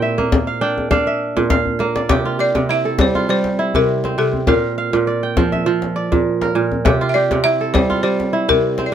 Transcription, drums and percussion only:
0.18 djembe tone
0.32 djembe slap, djembe bass
0.78 djembe tone
0.91 djembe slap, djembe bass
1.37 djembe slap, djembe tone
1.50 djembe slap, djembe bass
1.66 djembe bass
1.79 djembe slap
1.96 djembe slap
2.09 djembe slap, djembe bass
2.55 djembe slap, djembe tone
2.99 djembe slap, djembe bass
3.15 djembe tone
3.44 djembe slap
3.74 djembe tone, djembe bass
4.04 djembe slap
4.33 djembe slap, djembe tone
4.47 djembe slap, djembe bass
4.93 djembe slap
5.37 djembe slap, djembe bass
5.52 djembe tone
5.82 djembe slap
6.12 djembe tone, djembe bass
6.41 djembe slap
6.72 djembe slap, djembe tone
6.86 djembe slap, djembe bass
7.31 djembe slap, djembe tone
7.75 djembe slap, djembe bass
7.91 djembe tone
8.03 djembe slap
8.20 djembe slap
8.50 djembe bass
8.78 djembe slap

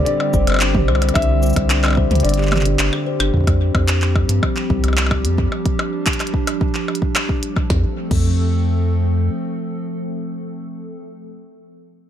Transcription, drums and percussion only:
0.06 closed hi-hat
0.20 percussion blips
0.34 kick, cabasa
0.47 closed hi-hat, percussion blips
0.50 percussion blips
0.52 percussion blips
0.54 percussion blips
0.56 percussion blips
0.59 clap, closed hi-hat, percussion blips
0.75 kick, mid tom
0.88 percussion blips
0.95 percussion blips
1.02 closed hi-hat, percussion blips
1.09 closed hi-hat, percussion blips
1.15 kick, closed hi-hat, percussion blips
1.22 closed hi-hat
1.43 cabasa
1.46 cabasa
1.50 cabasa
1.53 kick, closed hi-hat, cabasa, percussion blips
1.70 clap, closed hi-hat
1.84 clap, percussion blips
1.86 percussion blips
1.88 percussion blips
1.90 percussion blips
1.93 percussion blips
1.95 kick, percussion blips
2.11 closed hi-hat, mid tom
2.15 closed hi-hat
2.20 closed hi-hat
2.25 closed hi-hat
2.29 closed hi-hat
2.34 closed hi-hat
2.38 clap
2.43 clap
2.47 clap
2.52 clap, mid tom, percussion blips
2.56 clap
2.61 clap
2.66 closed hi-hat
2.79 clap, closed hi-hat
2.93 percussion blips
3.20 closed hi-hat, percussion blips
3.34 kick
3.37 kick
3.41 kick
3.44 kick
3.47 kick, closed hi-hat, percussion blips
3.75 kick, percussion blips
3.88 clap, closed hi-hat
4.02 clap
4.16 kick, percussion blips
4.29 closed hi-hat
4.43 kick, percussion blips
4.56 clap
4.70 kick
4.84 closed hi-hat, percussion blips
4.88 percussion blips
4.93 percussion blips
4.97 clap, percussion blips
5.02 percussion blips
5.07 percussion blips
5.11 kick, percussion blips
5.25 closed hi-hat
5.38 kick
5.52 percussion blips
5.66 kick, closed hi-hat
5.79 percussion blips
6.06 kick, clap, closed hi-hat
6.13 closed hi-hat
6.20 clap, closed hi-hat, percussion blips
6.27 closed hi-hat
6.34 kick
6.47 closed hi-hat, percussion blips
6.61 kick
6.75 clap
6.88 percussion blips
6.95 closed hi-hat
7.02 kick
7.16 clap, percussion blips
7.29 kick
7.43 closed hi-hat
7.56 kick, percussion blips
7.70 kick, snare
8.11 kick, crash

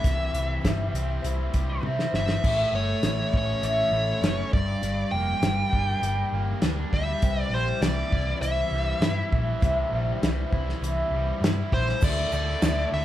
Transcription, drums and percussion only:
0.04 kick, closed hi-hat
0.34 closed hi-hat
0.64 kick, snare, closed hi-hat
0.95 closed hi-hat
1.24 closed hi-hat
1.54 kick, closed hi-hat
1.83 high tom
1.99 snare
2.14 snare
2.29 snare
2.44 kick, crash
3.03 snare, closed hi-hat
3.34 kick
3.63 closed hi-hat
4.24 snare, closed hi-hat
4.53 kick
4.83 closed hi-hat
5.43 snare, closed hi-hat
5.73 kick
6.03 closed hi-hat
6.62 snare, closed hi-hat
6.93 kick
7.22 kick, closed hi-hat
7.82 snare, closed hi-hat
8.12 kick
8.43 closed hi-hat
9.02 snare, closed hi-hat
9.32 kick
9.62 kick, closed hi-hat
10.23 snare, closed hi-hat
10.52 kick
10.69 snare
10.84 closed hi-hat
11.44 snare, closed hi-hat
11.72 kick
11.89 snare
12.01 kick, crash, shaker
12.32 shaker
12.62 snare, ride bell, shaker

